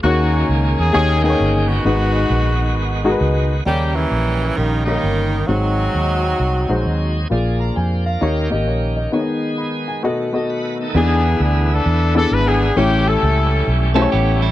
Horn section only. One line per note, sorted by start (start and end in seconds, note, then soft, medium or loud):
0.04 0.91 A#3 medium
0.04 0.91 C#4 medium
0.04 0.46 F#4 loud
0.77 0.92 G#4 loud
0.93 1.22 C#4 medium
0.93 1.21 G#4 loud
1.23 1.81 C#4 medium
1.23 1.66 G#4 loud
1.68 3.17 B3 medium
1.68 3.17 D#4 medium
1.68 3.20 F#4 medium
3.66 4.54 A#3 medium
3.66 3.95 C#4 medium
3.66 3.94 G4 medium
3.95 4.56 G3 medium
3.95 4.83 C#4 medium
3.95 4.57 E4 medium
4.56 4.86 G3 medium
4.56 4.86 A#3 medium
4.56 4.84 D#4 medium
4.85 5.45 G3 medium
4.85 5.45 A#3 medium
4.85 5.44 D#4 medium
5.48 7.12 C4 medium
5.48 7.12 D#4 medium
5.48 7.15 F#4 medium
10.96 11.82 B3 medium
10.96 11.71 D4 medium
10.96 11.38 G#4 medium
11.42 11.69 G#4 medium
11.72 12.45 D4 medium
11.72 12.15 A4 medium
12.16 12.31 A4 loud
12.32 12.47 B4 loud
12.46 12.75 B3 medium
12.46 12.75 D4 medium
12.46 12.77 G#4 medium
12.77 13.06 C#4 medium
12.77 13.06 E4 medium
12.77 13.07 G4 medium
13.07 13.93 C#4 medium
13.07 13.93 E4 medium
13.07 13.68 A4 medium